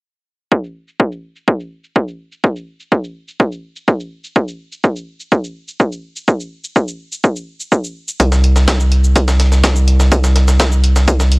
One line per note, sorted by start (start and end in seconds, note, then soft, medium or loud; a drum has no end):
0.52 kick loud
0.64 shaker soft
0.88 shaker medium
1.00 kick loud
1.12 shaker medium
1.36 shaker medium
1.48 kick loud
1.60 shaker medium
1.84 shaker soft
1.96 kick loud
1.96 shaker medium
2.08 shaker soft
2.32 shaker medium
2.44 kick loud
2.44 shaker soft
2.56 shaker soft
2.80 shaker medium
2.92 kick loud
2.92 shaker medium
3.04 shaker medium
3.28 shaker medium
3.40 kick loud
3.40 shaker soft
3.52 shaker soft
3.76 shaker soft
3.88 kick loud
3.88 shaker medium
4.00 shaker soft
4.24 shaker medium
4.36 kick loud
4.36 shaker soft
4.48 shaker soft
4.72 shaker medium
4.84 kick loud
4.84 shaker soft
4.96 shaker medium
5.20 shaker medium
5.32 kick loud
5.32 shaker soft
5.44 shaker soft
5.68 shaker soft
5.80 kick loud
5.80 shaker soft
5.92 shaker soft
6.16 shaker medium
6.28 kick loud
6.28 shaker soft
6.40 shaker soft
6.64 shaker soft
6.76 kick loud
6.76 shaker soft
6.88 shaker soft
7.12 shaker soft
7.24 kick loud
7.24 shaker soft
7.36 shaker soft
7.60 shaker soft
7.72 kick loud
7.72 shaker soft
7.84 shaker soft
8.08 shaker medium
8.20 11.39 C2 medium
8.20 kick loud
8.20 closed hi-hat medium
8.20 shaker soft
8.32 snare soft
8.32 shaker soft
8.44 closed hi-hat medium
8.56 snare medium
8.56 shaker soft
8.68 kick loud
8.68 snare loud
8.68 closed hi-hat medium
8.68 shaker soft
8.80 shaker soft
8.92 closed hi-hat medium
9.04 shaker medium
9.16 kick loud
9.16 closed hi-hat medium
9.16 shaker soft
9.28 snare medium
9.28 shaker soft
9.40 snare soft
9.40 closed hi-hat medium
9.52 snare soft
9.52 shaker soft
9.64 kick loud
9.64 snare loud
9.64 closed hi-hat medium
9.64 shaker soft
9.76 shaker soft
9.88 closed hi-hat medium
10.00 snare medium
10.00 shaker medium
10.12 kick loud
10.12 closed hi-hat medium
10.12 shaker soft
10.24 snare soft
10.24 shaker soft
10.36 snare soft
10.36 closed hi-hat medium
10.48 snare soft
10.48 shaker medium
10.60 kick loud
10.60 snare loud
10.60 closed hi-hat medium
10.60 shaker soft
10.72 shaker medium
10.84 closed hi-hat medium
10.96 snare medium
10.96 shaker medium
11.08 kick loud
11.08 closed hi-hat medium
11.08 shaker soft
11.20 snare soft
11.20 shaker soft
11.32 closed hi-hat medium